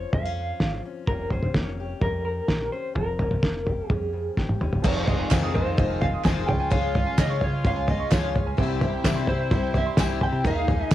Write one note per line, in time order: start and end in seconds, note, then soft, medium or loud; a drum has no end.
0.00 0.37 F2 medium
0.00 1.08 F3 medium
0.00 0.14 C#4 soft
0.00 0.60 F4 soft
0.00 0.14 C#5 medium
0.13 0.52 F2 medium
0.13 0.25 A#3 soft
0.13 0.81 F5 medium
0.13 kick medium
0.13 floor tom loud
0.25 0.84 C#4 soft
0.38 1.07 F2 medium
0.60 0.79 G#1 medium
0.60 1.05 F4 soft
0.60 kick medium
0.60 snare medium
0.86 1.09 C#4 soft
1.07 1.46 F1 medium
1.07 2.25 F2 medium
1.07 1.55 A#3 medium
1.07 1.32 C#4 medium
1.07 1.79 G4 medium
1.07 1.32 A#4 medium
1.07 kick medium
1.07 floor tom medium
1.30 2.02 C#4 medium
1.30 1.55 C5 medium
1.30 floor tom medium
1.43 floor tom medium
1.54 1.93 F1 medium
1.54 2.94 A#3 medium
1.54 2.02 C#5 medium
1.54 kick loud
1.54 snare medium
1.80 2.49 G4 medium
2.01 2.40 F2 medium
2.01 2.72 C#4 medium
2.01 2.24 A#4 medium
2.01 kick medium
2.01 floor tom medium
2.25 2.95 F2 medium
2.25 2.69 A#4 medium
2.48 2.68 A#1 medium
2.48 2.94 G4 medium
2.48 kick loud
2.48 snare loud
2.72 2.94 C#4 medium
2.72 2.95 C5 medium
2.95 3.34 F1 loud
2.95 4.12 F2 medium
2.95 3.88 A#4 medium
2.95 kick medium
2.95 floor tom medium
3.19 3.89 C#4 medium
3.19 floor tom medium
3.31 floor tom medium
3.42 3.81 F1 medium
3.42 4.81 A#3 medium
3.42 kick medium
3.42 snare loud
3.66 4.36 G4 soft
3.66 floor tom medium
3.88 4.28 F2 medium
3.88 4.60 C#4 medium
3.88 4.33 G#4 medium
3.88 kick loud
3.88 floor tom medium
4.13 6.71 F2 medium
4.37 4.58 G1 medium
4.37 4.81 G4 medium
4.37 kick loud
4.37 snare soft
4.49 high tom medium
4.60 4.81 F1 medium
4.60 4.81 C#4 medium
4.60 mid tom medium
4.73 floor tom medium
4.82 6.44 F1 medium
4.82 5.22 F1 loud
4.82 5.07 F2 medium
4.82 6.44 F2 medium
4.82 5.07 C3 loud
4.82 6.46 D#3 medium
4.82 5.08 D#3 medium
4.82 6.44 F3 medium
4.82 8.54 G#3 medium
4.82 5.07 G#3 loud
4.82 6.44 C4 medium
4.82 5.06 C4 loud
4.82 6.44 D#4 medium
4.82 8.54 F4 medium
4.82 5.06 F4 loud
4.82 6.45 G#4 medium
4.82 6.45 C5 medium
4.82 5.06 D#5 medium
4.82 kick loud
4.82 floor tom medium
4.82 crash medium
4.96 5.43 F5 medium
5.07 5.30 D#3 medium
5.07 5.30 G#3 medium
5.07 5.30 C4 medium
5.07 5.31 F4 medium
5.07 5.53 D#5 medium
5.07 floor tom loud
5.19 5.66 G#5 medium
5.30 5.54 F2 medium
5.30 5.79 F2 loud
5.30 5.54 C3 loud
5.30 5.54 D#3 loud
5.30 5.55 G#3 loud
5.30 5.53 C4 loud
5.30 5.52 F4 loud
5.30 kick loud
5.30 snare loud
5.30 clap loud
5.30 floor tom medium
5.30 tambourine loud
5.43 5.90 D#6 medium
5.53 5.76 D#3 soft
5.53 5.77 G#3 medium
5.53 5.78 C4 medium
5.53 5.77 F4 medium
5.53 6.03 C5 loud
5.53 5.76 D#5 medium
5.53 floor tom medium
5.66 6.13 F5 medium
5.77 6.16 F1 loud
5.77 6.01 D#3 medium
5.77 6.01 G#3 medium
5.77 6.01 C4 medium
5.77 6.00 F4 medium
5.77 5.99 D#5 medium
5.77 kick loud
5.77 floor tom medium
5.90 6.36 G#5 medium
6.01 6.24 D#3 soft
6.01 6.24 G#3 soft
6.01 6.25 C4 medium
6.01 6.25 F4 medium
6.01 6.23 D#5 medium
6.01 6.24 F5 loud
6.01 floor tom medium
6.13 6.48 D#6 medium
6.24 6.44 F1 medium
6.24 6.48 F2 medium
6.24 6.48 C3 loud
6.24 6.48 D#3 medium
6.24 6.48 G#3 loud
6.24 6.48 C4 loud
6.24 6.46 F4 medium
6.24 6.48 D#5 medium
6.24 6.46 G#5 loud
6.24 kick loud
6.24 snare loud
6.24 clap medium
6.24 floor tom medium
6.24 tambourine loud
6.36 6.48 F5 medium
6.47 8.31 C#2 medium
6.47 7.05 C#2 loud
6.47 8.56 C#3 medium
6.47 8.31 C#3 medium
6.47 8.08 F3 medium
6.47 8.08 G#3 medium
6.47 6.70 G#3 soft
6.47 8.08 C#4 medium
6.47 6.70 C#4 soft
6.47 6.71 F4 medium
6.47 8.09 G#4 medium
6.47 6.69 C#5 medium
6.47 8.09 C#5 medium
6.47 6.70 G5 loud
6.47 floor tom medium
6.60 7.05 G#5 medium
6.70 6.94 C#3 medium
6.70 6.94 F3 medium
6.70 6.95 G#3 loud
6.70 6.95 C#4 loud
6.70 6.93 F4 medium
6.70 6.93 C#5 medium
6.70 7.19 F5 loud
6.70 kick loud
6.70 floor tom medium
6.83 7.30 F5 medium
6.94 7.18 G#3 soft
6.94 7.18 C#4 medium
6.94 7.18 F4 medium
6.94 7.40 C#5 medium
6.94 floor tom loud
7.06 7.53 G#5 medium
7.18 7.66 C#3 loud
7.18 7.41 C#3 loud
7.18 7.42 F3 loud
7.18 7.42 G#3 medium
7.18 7.41 C#4 medium
7.18 7.40 F4 medium
7.18 7.40 D#5 loud
7.18 kick loud
7.18 snare loud
7.18 clap loud
7.18 floor tom medium
7.18 tambourine loud
7.30 7.76 C#6 medium
7.41 7.64 G#3 soft
7.41 7.65 C#4 soft
7.41 7.64 F4 medium
7.41 7.63 C#5 medium
7.41 7.67 C#5 loud
7.41 floor tom medium
7.53 8.00 F5 medium
7.65 8.03 C#2 loud
7.65 7.88 F3 medium
7.65 7.88 G#3 medium
7.65 7.88 C#4 medium
7.65 7.86 F4 medium
7.65 7.87 C#5 medium
7.65 7.90 F5 loud
7.65 kick loud
7.65 floor tom loud
7.76 8.23 G#5 medium
7.88 8.11 G#3 soft
7.88 8.12 C#4 medium
7.88 8.11 F4 medium
7.88 8.10 C#5 medium
7.88 8.13 D#5 medium
7.88 floor tom loud
7.99 8.46 C#6 medium
8.11 8.40 C#2 medium
8.11 8.34 C#3 loud
8.11 8.58 F3 medium
8.11 8.35 F3 medium
8.11 8.58 G#3 medium
8.11 8.35 G#3 medium
8.11 8.58 C#4 soft
8.11 8.34 C#4 medium
8.11 8.34 F4 loud
8.11 8.59 G#4 medium
8.11 8.33 C#5 medium
8.11 8.59 C#5 medium
8.11 8.45 C#5 medium
8.11 kick loud
8.11 snare loud
8.11 clap loud
8.11 floor tom medium
8.11 tambourine loud
8.23 8.58 F5 loud
8.35 8.58 G#3 soft
8.35 8.58 C#4 medium
8.35 8.58 F4 soft
8.35 8.58 C#5 medium
8.35 floor tom medium
8.46 8.56 C#2 loud
8.46 8.58 G#5 medium
8.57 10.41 C2 medium
8.57 8.96 C2 loud
8.57 8.81 C3 medium
8.57 10.41 C3 medium
8.57 10.44 C3 medium
8.57 10.41 G3 medium
8.57 8.81 G3 loud
8.57 10.44 G3 medium
8.57 10.41 C4 medium
8.57 8.81 C4 medium
8.57 8.82 E4 loud
8.57 10.41 E4 medium
8.57 10.44 E4 medium
8.57 8.80 G4 loud
8.57 8.80 C5 loud
8.57 10.42 C5 medium
8.57 10.42 E5 loud
8.57 kick loud
8.57 floor tom medium
8.70 9.16 E5 medium
8.81 9.04 C4 medium
8.81 9.05 E4 medium
8.81 9.05 G4 medium
8.81 9.27 C5 medium
8.81 floor tom loud
8.93 9.40 G5 medium
9.04 9.28 C3 loud
9.04 9.53 C3 loud
9.04 9.28 G3 loud
9.04 9.28 C4 loud
9.04 9.29 E4 loud
9.04 9.27 G4 loud
9.04 kick loud
9.04 snare loud
9.04 clap loud
9.04 floor tom medium
9.04 tambourine loud
9.16 9.63 C6 medium
9.27 9.51 C4 soft
9.27 9.52 E4 soft
9.27 9.51 G4 medium
9.27 9.49 C5 medium
9.27 9.77 C5 loud
9.27 floor tom medium
9.39 9.86 E5 medium
9.51 9.89 C2 loud
9.51 9.75 G3 medium
9.51 9.75 C4 medium
9.51 9.74 E4 medium
9.51 9.73 G4 medium
9.51 9.74 C5 medium
9.51 kick loud
9.51 floor tom loud
9.63 10.10 G5 medium
9.74 9.97 C4 soft
9.74 9.98 E4 medium
9.74 9.98 G4 medium
9.74 9.96 C5 medium
9.74 9.98 E5 loud
9.74 floor tom medium
9.86 10.33 C6 medium
9.97 10.26 C2 medium
9.97 10.21 C3 medium
9.97 10.22 G3 medium
9.97 10.22 C4 loud
9.97 10.22 E4 loud
9.97 10.20 G4 loud
9.97 10.20 C5 medium
9.97 10.23 G#5 loud
9.97 kick loud
9.97 snare loud
9.97 clap loud
9.97 floor tom medium
9.97 tambourine loud
10.09 10.44 E5 medium
10.21 10.45 C4 soft
10.21 10.46 E4 soft
10.21 10.45 G4 soft
10.21 10.45 C5 medium
10.21 10.46 G5 loud
10.21 floor tom medium
10.32 10.42 C3 loud
10.32 10.44 G5 medium
10.44 10.83 D#2 loud
10.44 10.95 D#2 medium
10.44 10.95 A#2 medium
10.44 10.68 D#3 medium
10.44 10.95 D#3 medium
10.44 10.95 G#3 medium
10.44 10.95 A#3 medium
10.44 10.68 A#3 medium
10.44 10.95 D#4 medium
10.44 10.69 D#4 medium
10.44 10.95 D#4 medium
10.44 10.67 G#4 medium
10.44 10.67 A#4 medium
10.44 10.95 A#4 medium
10.44 10.95 D#5 medium
10.44 10.94 F5 loud
10.44 kick medium
10.44 floor tom medium
10.56 10.95 D#5 medium
10.68 10.91 A#3 medium
10.68 10.91 D#4 soft
10.68 10.91 G#4 medium
10.68 10.95 A#4 medium
10.68 floor tom loud
10.80 10.95 G#5 medium
10.91 10.95 D#3 loud
10.91 10.95 D#3 medium
10.91 kick loud
10.91 snare loud
10.91 floor tom loud